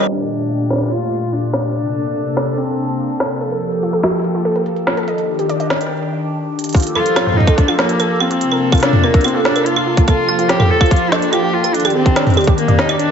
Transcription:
0.08 A#2 A3 D4 F4 G4, closed hi-hat
0.39 closed hi-hat
0.50 closed hi-hat
0.60 closed hi-hat
0.70 snare
0.73 snare
0.76 snare
0.78 snare
0.81 snare, closed hi-hat
0.83 snare
0.86 snare
0.88 F4, snare, closed hi-hat
1.22 closed hi-hat
1.33 D4, closed hi-hat
1.43 closed hi-hat
1.53 snare
1.74 C3 A#3 D4 A4, closed hi-hat
1.85 closed hi-hat
2.06 closed hi-hat
2.16 closed hi-hat
2.26 closed hi-hat
2.37 snare
2.47 closed hi-hat
2.58 C4, closed hi-hat
2.89 closed hi-hat
2.99 closed hi-hat
3.10 closed hi-hat
3.20 snare
3.31 closed hi-hat
3.41 F3 G4 A4, closed hi-hat
3.52 A#4, closed hi-hat
3.72 closed hi-hat
3.83 F4, closed hi-hat
3.93 A4, closed hi-hat
4.03 A#4, snare
4.14 closed hi-hat
4.17 closed hi-hat
4.19 closed hi-hat
4.22 closed hi-hat
4.24 closed hi-hat
4.35 F4
4.45 A4
4.56 A#4, closed hi-hat
4.66 closed hi-hat
4.76 closed hi-hat
4.87 F4, snare
4.97 A4, closed hi-hat
5.08 D#3 D4 G4 D#5, closed hi-hat
5.18 closed hi-hat
5.39 G4, closed hi-hat
5.49 D5, closed hi-hat
5.60 D#5, closed hi-hat
5.70 snare
5.81 closed hi-hat
6.59 closed hi-hat
6.64 closed hi-hat
6.69 closed hi-hat
6.73 A#3 F4, closed hi-hat
6.74 F3 G4 A4, kick, closed hi-hat
6.76 closed hi-hat
6.80 closed hi-hat
6.82 closed hi-hat
6.87 closed hi-hat
6.95 F4 A4, claves
7.06 closed hi-hat
7.16 F4, snare, closed hi-hat, claves
7.27 F4, mid tom
7.34 D#4, mid tom
7.40 mid tom
7.47 A4, kick, closed hi-hat, claves
7.58 D4, kick, closed hi-hat
7.68 F4, claves
7.79 A#3 F4, snare
7.89 closed hi-hat
8.00 A4, closed hi-hat, claves
8.20 C4 F4, claves
8.31 F4, closed hi-hat
8.41 C3 D4, closed hi-hat
8.52 A#4, claves
8.72 F4, kick, closed hi-hat, claves
8.75 closed hi-hat
8.78 closed hi-hat
8.80 snare, closed hi-hat
8.83 D4 F4, closed hi-hat
8.93 mid tom
9.04 A#3 A#4, claves
9.14 kick, closed hi-hat
9.21 F4, closed hi-hat
9.24 C4, closed hi-hat, claves
9.28 closed hi-hat
9.35 F4
9.45 D4, snare
9.56 A#4, closed hi-hat, claves
9.66 F4, closed hi-hat
9.76 F4, claves
9.87 F4
9.97 kick, closed hi-hat
10.08 F3 F4 G4 A4, kick, closed hi-hat, claves
10.29 F4, claves
10.39 F4, closed hi-hat
10.49 G4, snare, closed hi-hat
10.60 A4, mid tom, claves
10.70 A4
10.81 F4, kick, closed hi-hat, claves
10.86 closed hi-hat
10.91 F4, kick, closed hi-hat
10.96 closed hi-hat
11.12 D4 A4, snare, claves
11.22 closed hi-hat
11.33 F4 G4, closed hi-hat, claves
11.43 F4
11.54 F4
11.64 A4, closed hi-hat, claves
11.74 D#3 D4, closed hi-hat
11.80 closed hi-hat
11.85 G4, closed hi-hat, claves
11.90 closed hi-hat
11.95 C4 G4
12.06 kick, closed hi-hat
12.16 D5, snare, closed hi-hat, claves
12.27 closed hi-hat, mid tom
12.30 closed hi-hat
12.34 G4, closed hi-hat
12.37 closed hi-hat, claves
12.41 closed hi-hat
12.44 G4, kick, closed hi-hat
12.48 closed hi-hat
12.58 A#3, closed hi-hat
12.68 D5, closed hi-hat, mid tom
12.79 D#4, snare
12.89 D5, closed hi-hat, claves
13.00 D4, closed hi-hat

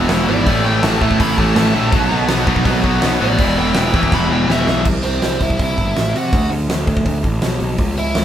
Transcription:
0.09 E1 E2 B2 E3 G#3 B3 E4, snare, open hi-hat
0.28 G#1 E2 B2 E3 G#3 B3 E4 D5
0.46 A1 A2 E3 A3 C#4 E4, kick, open hi-hat
0.64 A2 E3 A3 C#4 E4 G5
0.82 A1 A2 E3 A3 C#4 E4 A5, snare, open hi-hat
1.01 A2 E3 A3 C#4 E4, kick
1.11 kick
1.20 A1 A2 E3 A3 C#4 E4 B5, kick, open hi-hat
1.37 A1 A2 E3 A3 C#4 E4 A5, kick
1.56 A1 A2 E3 A3 C#4 E4 A5, snare, open hi-hat
1.75 A#1 A2 E3 A3 C#4 E4
1.92 B1 B2 D#3 F#3 B3 D#4, kick, open hi-hat
2.11 B1 B2 D#3 F#3 B3 D#4
2.28 B1 B2 D#3 F#3 B3 D#4, snare, open hi-hat
2.47 B1 B2 D#3 F#3 B3 D#4, kick
2.56 kick
2.65 B1 B2 D#3 F#3 B3 D#4, kick, open hi-hat
2.84 B2 D#3 F#3 B3 D#4, kick
3.01 B1 B2 D#3 F#3 B3 D#4, snare, open hi-hat
3.20 A1 B2 D#3 F#3 B3 D#4 D5
3.38 E1 E2 B2 E3 G#3 B3 E4, kick, open hi-hat
3.57 E2 B2 E3 G#3 B3 E4 G5
3.74 E1 E2 B2 E3 G#3 B3 E4, snare, open hi-hat
3.79 G5
3.93 E2 B2 E3 G#3 B3 E4, kick
4.03 kick
4.11 E1 E2 B2 E3 G#3 B3 E4 B5, kick, snare
4.29 E1 E2 B2 E3 G#3 B3 E4 G5
4.48 E1 E2 B2 E3 G#3 B3 E4 E5, snare
4.66 B1 E2 B2 E3 G#3 B3 E4, snare
4.85 C2, kick, crash
5.03 C2 C4 C5, open hi-hat
5.22 C2, snare, open hi-hat
5.40 C2 E4 E5, kick, open hi-hat
5.50 kick
5.59 C2 E4 E5, kick, open hi-hat
5.78 G1, kick, open hi-hat
5.96 A1, snare, open hi-hat
6.14 C3 F#4 F#5, open hi-hat
6.33 D2, kick, open hi-hat
6.51 D2, open hi-hat
6.69 D2, snare, open hi-hat
6.87 D2, kick, open hi-hat
6.97 kick
7.06 D2, kick, open hi-hat
7.24 A1, kick, open hi-hat
7.42 B1, snare, open hi-hat
7.60 B1, open hi-hat
7.78 C#2, kick, open hi-hat
7.97 C#2 E4 E5, open hi-hat
8.15 C#2, snare, open hi-hat

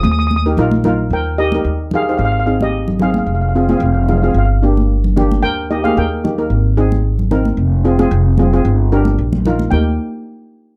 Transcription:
0.03 D#2 D#6, high conga
0.12 D#6
0.19 D#6
0.27 D#6, high conga
0.36 D#6
0.46 D#4 G4 A#4
0.57 A#1 D#4 F4 A#4, low conga
0.71 high conga
0.84 D#4 F4 A#4, low conga
1.10 D#2 A#4 G5
1.38 D#4 G4 A#4 D#5
1.52 D#4 G4 A#4, high conga
1.64 D#2
1.91 D#4 G4 G#4 A#4, low conga
1.95 F5
2.02 F5
2.09 D#4 G4 C5 F5
2.18 G#1 F5
2.25 F5
2.32 F5
2.40 F5
2.46 C4 D#4 G#4 F5
2.61 G4 D#5, high conga
2.88 low conga
2.99 C4 D#4 G#4 F5, low conga
3.10 F5, high conga
3.18 F5
3.26 F1 F5
3.35 F5
3.42 F5
3.49 F5
3.55 C4 F4 G#4 F5
3.63 F5
3.69 C4 F4 G#4 F5, high conga
3.77 F1 F5
3.85 F5
3.94 F5
4.03 F5
4.09 C4 F4 G#4 F5, low conga
4.17 F5
4.22 C4 F4 G#4 F5
4.31 G1 F5
4.38 F5
4.46 F5
4.63 A#3 D4 G4
4.77 high conga
5.04 low conga
5.16 A#3 D4 G4, low conga
5.31 high conga
5.42 D#2 A#4 G5
5.70 A#3 D#4 G4 D#5
5.84 A#3 D#4 G4 G#4 F5, high conga
5.97 D#2 A#4 G5
6.24 A#3 D#4 G4, low conga
6.38 A#3 D#4 A#4
6.50 G#1
6.77 C4 D#4 G#4
6.92 high conga
7.19 low conga
7.31 C4 D#4 A#4, low conga
7.45 high conga
7.57 F1
7.85 C4 F4 G#4
7.99 C4 F4 G#4, high conga
8.11 F1
8.38 C4 F4 G#4, high conga, low conga
8.53 C4 F4 G#4
8.65 G1
8.92 D4 G4 A#4
9.05 high conga
9.18 A#1
9.33 high conga, low conga
9.45 D#4 F4 A#4, low conga
9.59 high conga
9.71 D#2 D#4 G4 A#4 G5, high conga

